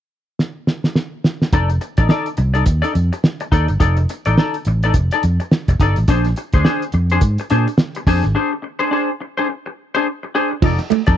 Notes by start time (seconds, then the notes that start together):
0.39 snare
0.67 snare
0.84 snare
0.95 snare
1.24 snare
1.42 snare
1.53 F1 D#4 A4 D5, kick, closed hi-hat
1.70 muted clean electric guitar stroke, closed hi-hat
1.81 muted clean electric guitar stroke, closed hi-hat
1.97 A1 D#4 A4 D5, kick, closed hi-hat
2.09 D#4 A4 D5, snare
2.26 closed hi-hat
2.37 C2, muted clean electric guitar stroke, closed hi-hat
2.54 D#4 A4 D5, closed hi-hat
2.65 D#2, muted clean electric guitar stroke, kick, closed hi-hat
2.82 D#4 A4 D5, closed hi-hat
2.94 F2, muted clean electric guitar stroke, closed hi-hat
3.13 muted clean electric guitar stroke, closed hi-hat
3.24 snare
3.40 muted clean electric guitar stroke, closed hi-hat
3.52 D#2 D#4 A4 D5, kick, closed hi-hat
3.68 G1, muted clean electric guitar stroke, closed hi-hat
3.80 F1 D#4 A4 D5, kick, closed hi-hat
3.97 muted clean electric guitar stroke, closed hi-hat
4.09 muted clean electric guitar stroke, closed hi-hat
4.25 A1 D#4 A4 D5, closed hi-hat
4.38 D#4 A4 D5, snare
4.54 closed hi-hat
4.65 A1, muted clean electric guitar stroke, closed hi-hat
4.83 D#4 A4 D5, closed hi-hat
4.94 F1, muted clean electric guitar stroke, kick, closed hi-hat
5.11 D#4 A4 D5, closed hi-hat
5.23 F2, muted clean electric guitar stroke, closed hi-hat
5.40 muted clean electric guitar stroke, closed hi-hat
5.51 snare
5.68 F1, muted clean electric guitar stroke, kick, closed hi-hat
5.80 G1 D#4 A4 D5, kick, closed hi-hat
5.96 A1, muted clean electric guitar stroke, closed hi-hat
6.08 A#1 D4 G#4 C5, kick, closed hi-hat
6.25 muted clean electric guitar stroke, snare, closed hi-hat
6.36 muted clean electric guitar stroke, closed hi-hat
6.53 D2 D4 G#4 C5, kick, closed hi-hat
6.64 D4 G#4 C5, snare
6.82 closed hi-hat
6.92 F2, muted clean electric guitar stroke, closed hi-hat
7.10 D4 G#4 C5, closed hi-hat
7.21 G#2, kick, closed hi-hat
7.38 muted clean electric guitar stroke, closed hi-hat
7.50 A#2 D4 G#4 C5, closed hi-hat
7.67 muted clean electric guitar stroke, closed hi-hat
7.78 snare
7.95 muted clean electric guitar stroke, closed hi-hat
8.07 F2 D4 G#4 C5, kick, open hi-hat
8.23 G#1, muted clean electric guitar stroke, snare, closed hi-hat
8.35 D4 G#4 C5
8.53 muted clean electric guitar stroke
8.62 muted clean electric guitar stroke
8.79 D4 G#4 C5
8.91 D4 G#4 C5
9.21 muted clean electric guitar stroke
9.37 D4 G#4 C5
9.49 muted clean electric guitar stroke
9.66 muted clean electric guitar stroke
9.95 D4 G#4 C5
10.23 muted clean electric guitar stroke
10.35 D4 G#4 C5
10.51 muted clean electric guitar stroke
10.62 F1 F3 D#4 A4 D5, kick, crash
10.79 muted clean electric guitar stroke, snare, closed hi-hat
10.90 A3, muted clean electric guitar stroke, muted fingered electric bass stroke, closed hi-hat, muted conga
11.06 F2 D#4 A4 D5, kick, closed hi-hat